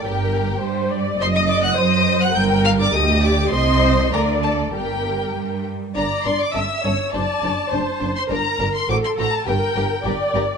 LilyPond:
<<
  \new Staff \with { instrumentName = "Violin section" } { \time 2/4 \key g \minor \tempo 4 = 102 g''4. r8 | c'''16 ees'''16 d'''16 fis'''16 ees'''8. fis'''16 | g'''8 f'''16 d'''16 ees'''8 d'''8 | c'''4 bes''8 a''8 |
g''4. r8 | bes''8 c'''16 d'''16 e'''4 | a''4.~ a''16 c'''16 | bes''8. c'''16 d'''16 c'''16 bes''16 a''16 |
g''4. r8 | }
  \new Staff \with { instrumentName = "Viola section" } { \time 2/4 \key g \minor bes'4 c''8 d''8 | ees''4 c''4 | bes'4 g'4 | ees''4 d''4 |
bes'4. r8 | d''4 e''8 cis''8 | d''4 c''4 | bes'4 a'4 |
bes'4 d''4 | }
  \new Staff \with { instrumentName = "Violin section" } { \time 2/4 \key g \minor g'4. r8 | c''16 ees''16 d''16 fis''16 ees''8. fis''16 | g''8 f''16 d''16 ees''8 d''8 | c''4 bes'8 a'8 |
g'4. r8 | <d' bes'>8 <d' bes'>8 <cis' a'>8 <cis' a'>8 | <d' c''>8 <d' c''>8 <d' c''>8 <d' c''>8 | <d' bes'>8 <d' bes'>8 <fis' c''>8 <fis' c''>8 |
<g' bes'>8 <g' bes'>8 <g' bes'>8 <g' bes'>8 | }
  \new Staff \with { instrumentName = "Cello section" } { \clef bass \time 2/4 \key g \minor g,4 g4 | fis,4 fis4 | g,4 d,4 | c4 d4 |
g,4 g4 | g,8 g,8 g,8 g,8 | fis,8 fis,8 fis,8 fis,8 | g,8 g,8 a,8 a,8 |
g,8 g,8 g,8 g,8 | }
  \new Staff \with { instrumentName = "Double bass section" } { \clef bass \time 2/4 \key g \minor g,,4 g,4 | fis,,4 fis,4 | g,,4 d,4 | c,4 d,4 |
g,,4 g,4 | g,,8 g,,8 g,,8 g,,8 | fis,,8 fis,,8 fis,,8 fis,,8 | g,,8 g,,8 a,,8 a,,8 |
g,,8 g,,8 g,,8 g,,8 | }
>>